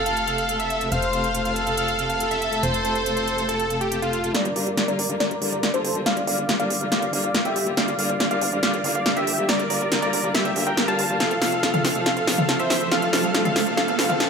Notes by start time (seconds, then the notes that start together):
Already playing: F1 A4
0.06 C3 A3 F4 A4 F5, closed hi-hat
0.17 closed hi-hat
0.27 C3 A3 F4 A4, closed hi-hat
0.38 F5, closed hi-hat
0.49 C3 A3 F4 A4, closed hi-hat
0.59 C3 A3 F4 A4 E5, closed hi-hat
0.70 closed hi-hat
0.81 C3 A3 F4 A4, closed hi-hat
0.92 F1 C3 A3 F4 A4 C5 F5, closed hi-hat
1.02 closed hi-hat
1.13 C3 A3 F4 A4 F5, closed hi-hat
1.24 closed hi-hat
1.34 C3 A3 F4 A4, closed hi-hat
1.45 C3 A3 F4 A4 F5, closed hi-hat
1.56 A4, closed hi-hat
1.66 C3 A3 F4 A4, closed hi-hat
1.77 C3 A3 F4 A4 F5, closed hi-hat
1.88 closed hi-hat
1.98 C3 A3 F4 A4, closed hi-hat
2.10 F5, closed hi-hat
2.20 C3 A3 F4 A4, closed hi-hat
2.31 C3 A3 F4 A4 E5, closed hi-hat
2.42 closed hi-hat
2.52 C3 A3 F4 A4, closed hi-hat
2.63 F1 C3 A3 F4 A4 C5, closed hi-hat
2.74 closed hi-hat
2.84 C3 A3 F4 A4 C5, closed hi-hat
2.95 closed hi-hat
3.06 C3 A3 F4 A4, closed hi-hat
3.16 C3 A3 F4 A4 C5, closed hi-hat
3.28 closed hi-hat
3.38 C3 A3 F4 A4, closed hi-hat
3.49 C3 A3 F4 A4, closed hi-hat
3.60 closed hi-hat
3.70 C3 A3 F4 A4, closed hi-hat
3.81 G4, closed hi-hat
3.92 C3 A3 F4 A4, closed hi-hat
4.02 C3 A3 F4 A4, closed hi-hat
4.13 closed hi-hat
4.24 C3 A3 F4 A4, closed hi-hat
4.34 D3 G3 A#3 F4 A#4 D5, snare, closed hi-hat
4.45 G1, closed hi-hat
4.56 G1 D3 G3 A#3 F4 A#4 D5, open hi-hat
4.67 G1, closed hi-hat
4.77 D3 G3 A#3 F4, snare, closed hi-hat
4.88 G1 D3 G3 A#3 F4 A#4 D5, closed hi-hat
4.99 G1, open hi-hat
5.09 G1 D3 G3 A#3 F4, closed hi-hat
5.20 D3 G3 A#3 F4 A#4 D5, snare, closed hi-hat
5.31 G1, closed hi-hat
5.41 G1 D3 G3 A#3 F4, open hi-hat
5.52 G1 A#4 D5, closed hi-hat
5.63 D3 G3 A#3 F4, snare, closed hi-hat
5.74 G1 D3 G3 A#3 F4 A4 C5, closed hi-hat
5.84 G1, open hi-hat
5.95 G1 D3 G3 A#3 F4, closed hi-hat
6.06 D3 G3 A#3 F4 D5 F5, snare, closed hi-hat
6.17 G1, closed hi-hat
6.27 G1 D3 G3 A#3 F4 D5 F5, open hi-hat
6.38 G1, closed hi-hat
6.49 D3 G3 A#3 F4, snare, closed hi-hat
6.59 G1 D3 G3 A#3 F4 D5 F5, closed hi-hat
6.70 G1, open hi-hat
6.81 G1 D3 G3 A#3 F4, closed hi-hat
6.92 D3 G3 A#3 F4 D5 F5, snare, closed hi-hat
7.02 G1, closed hi-hat
7.13 G1 D3 G3 A#3 F4, open hi-hat
7.24 G1 D5 F5, closed hi-hat
7.34 D3 G3 A#3 F4, snare, closed hi-hat
7.45 G1 D3 G3 A#3 F4 G4 E5, closed hi-hat
7.56 G1, open hi-hat
7.67 G1 D3 G3 A#3 F4, closed hi-hat
7.77 D3 G3 A#3 F4 D5 F5, snare, closed hi-hat
7.88 G1, closed hi-hat
7.99 G1 D3 G3 A#3 F4 D5 F5, open hi-hat
8.09 G1, closed hi-hat
8.20 D3 G3 A#3 F4, snare, closed hi-hat
8.31 G1 D3 G3 A#3 F4 D5 F5, closed hi-hat
8.41 G1, open hi-hat
8.52 G1 D3 G3 A#3 F4, closed hi-hat
8.63 D3 G3 A#3 F4 D5 F5, snare, closed hi-hat
8.74 G1, closed hi-hat
8.84 G1 D3 G3 A#3 F4, open hi-hat
8.95 G1 D5 F5, closed hi-hat
9.06 D3 G3 A#3 F4, snare, closed hi-hat
9.16 G1 D3 G3 A#3 F4 G4 E5, closed hi-hat
9.27 G1, open hi-hat
9.38 G1 D3 G3 A#3 F4, closed hi-hat
9.49 D3 G3 A#3 F4 A#4 D5, snare, closed hi-hat
9.59 G1, closed hi-hat
9.70 G1 D3 G3 A#3 F4 A#4 D5, open hi-hat
9.81 G1, closed hi-hat
9.91 D3 G3 A#3 F4, snare, closed hi-hat
10.02 G1 D3 G3 A#3 F4 A#4 D5, closed hi-hat
10.13 G1, open hi-hat
10.24 G1 D3 G3 A#3 F4, closed hi-hat
10.34 D3 G3 A#3 F4 G4 E5, snare, closed hi-hat
10.45 G1, closed hi-hat
10.56 G1 D3 G3 A#3 F4, open hi-hat
10.67 G1 A#4 G5, closed hi-hat
10.77 D3 G3 A#3 F4, snare, closed hi-hat
10.88 G1 D3 G3 A#3 F4 F5 A5, closed hi-hat
10.99 G1, open hi-hat
11.09 G1 D3 G3 A#3 F4, closed hi-hat
11.20 C3 F3 A3 F4 A4 F5, snare, closed hi-hat, riser
11.31 F1, closed hi-hat
11.41 F1 C3 F3 A3 F4 A4 F5, snare, open hi-hat
11.52 F1, closed hi-hat
11.63 C3 F3 A3 F4, snare, closed hi-hat
11.74 F1 C3 F3 A3 F4 A4 F5, closed hi-hat, mid tom
11.84 F1, snare, open hi-hat
11.95 F1 C3 F3 A3 F4, closed hi-hat
12.06 C3 F3 A3 F4 A4 F5, snare, closed hi-hat
12.17 F1, closed hi-hat
12.27 F1 C3 F3 A3 F4, snare, open hi-hat
12.38 F1 A4 F5, mid tom
12.49 C3 F3 A3 F4, snare, closed hi-hat
12.59 F1 C3 F3 A3 F4 C5 E5, closed hi-hat
12.70 F1, snare, open hi-hat
12.81 F1 C3 F3 A3 F4, closed hi-hat
12.92 C3 F3 A3 F4 A4 F5, snare, closed hi-hat
13.02 F1, closed hi-hat
13.13 F1 C3 F3 A3 F4 A4 F5, snare, open hi-hat
13.24 F1
13.34 C3 F3 A3 F4, snare, closed hi-hat
13.45 F1 C3 F3 A3 F4 A4 F5, closed hi-hat, mid tom
13.56 F1, snare, open hi-hat
13.67 F1 C3 F3 A3 F4, closed hi-hat
13.77 C3 F3 A3 F4 A4 F5, snare, closed hi-hat
13.88 F1, closed hi-hat
13.99 C3 F3 A3 F4, snare, open hi-hat
14.09 A4 F5, closed hi-hat, mid tom
14.20 C3 F3 A3 F4, snare, closed hi-hat